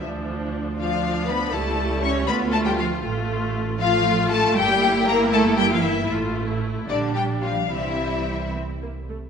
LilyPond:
<<
  \new Staff \with { instrumentName = "Violin section" } { \time 6/8 \key d \dorian \tempo 4. = 79 r4. f''4 b''8 | a''4 cis'''8 b''8 a''16 g''16 f''8 | \key f \major r4. f''4 a''8 | g''4 bes''8 a''8 g''16 f''16 e''8 |
r4. d''8 g''8 f''8 | e''4. r4. | }
  \new Staff \with { instrumentName = "Violin section" } { \time 6/8 \key d \dorian r4. f'4 b'8 | a'4 cis''8 b'8 a'16 g'16 f'8 | \key f \major r4. f'4 a'8 | g'4 bes'8 a'8 g'16 f'16 e'8 |
r4. d'8 g'8 f'8 | e'4. r4. | }
  \new Staff \with { instrumentName = "Viola section" } { \time 6/8 \key d \dorian << { d'4. d'4. | e'4. f'4. | \key f \major f'4. f'4. | e'2. |
f'8. e'8. d'4. | c'4. c'8 bes8 a8 | } \\ { f4. f4. | g4. a4. | a4. a4. | bes2. |
a4. g4. | g4. r4. | } >> }
  \new Staff \with { instrumentName = "Cello section" } { \clef bass \time 6/8 \key d \dorian r4. f4 b8 | a4 cis'8 b8 a16 g16 f8 | \key f \major r4. f4 a8 | g4 bes8 a8 g16 f16 e8 |
r4. d8 g8 f8 | e4. r4. | }
  \new Staff \with { instrumentName = "Double bass section" } { \clef bass \time 6/8 \key d \dorian d,2. | cis,4. d,4. | \key f \major a,,2. | g,,2. |
a,,4. bes,,4. | c,2~ c,8 r8 | }
>>